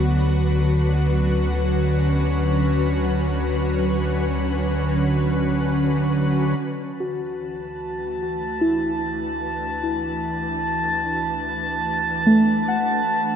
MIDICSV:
0, 0, Header, 1, 5, 480
1, 0, Start_track
1, 0, Key_signature, 2, "major"
1, 0, Tempo, 500000
1, 12825, End_track
2, 0, Start_track
2, 0, Title_t, "Synth texture"
2, 0, Program_c, 0, 99
2, 6327, Note_on_c, 0, 81, 69
2, 12825, Note_off_c, 0, 81, 0
2, 12825, End_track
3, 0, Start_track
3, 0, Title_t, "Synth keys"
3, 0, Program_c, 1, 88
3, 6483, Control_c, 1, 64, 127
3, 6722, Note_on_c, 1, 66, 55
3, 8269, Note_on_c, 1, 64, 55
3, 8430, Note_off_c, 1, 66, 0
3, 10631, Note_off_c, 1, 64, 0
3, 11774, Note_on_c, 1, 57, 69
3, 12175, Note_on_c, 1, 78, 61
3, 12562, Control_c, 1, 64, 0
3, 12719, Control_c, 1, 64, 127
3, 12825, Note_off_c, 1, 57, 0
3, 12825, Note_off_c, 1, 78, 0
3, 12825, End_track
4, 0, Start_track
4, 0, Title_t, "Ambient pad"
4, 0, Program_c, 2, 92
4, 0, Note_on_c, 2, 50, 63
4, 0, Note_on_c, 2, 54, 64
4, 0, Note_on_c, 2, 59, 62
4, 0, Note_on_c, 2, 66, 56
4, 0, Note_on_c, 2, 71, 66
4, 719, Note_on_c, 2, 61, 69
4, 965, Note_off_c, 2, 59, 0
4, 6320, Note_off_c, 2, 61, 0
4, 6321, Note_off_c, 2, 54, 0
4, 6330, Note_off_c, 2, 50, 0
4, 6336, Note_on_c, 2, 52, 77
4, 6883, Note_on_c, 2, 57, 58
4, 7314, Note_on_c, 2, 62, 67
4, 12555, Note_off_c, 2, 57, 0
4, 12825, Note_off_c, 2, 52, 0
4, 12825, Note_off_c, 2, 62, 0
4, 12825, Note_off_c, 2, 66, 0
4, 12825, Note_off_c, 2, 71, 0
4, 12825, End_track
5, 0, Start_track
5, 0, Title_t, "Sub bass"
5, 0, Program_c, 3, 38
5, 0, Note_on_c, 3, 38, 84
5, 6280, Note_off_c, 3, 38, 0
5, 6325, Note_on_c, 3, 38, 81
5, 12513, Note_off_c, 3, 38, 0
5, 12543, Note_on_c, 3, 38, 79
5, 12825, Note_off_c, 3, 38, 0
5, 12825, End_track
0, 0, End_of_file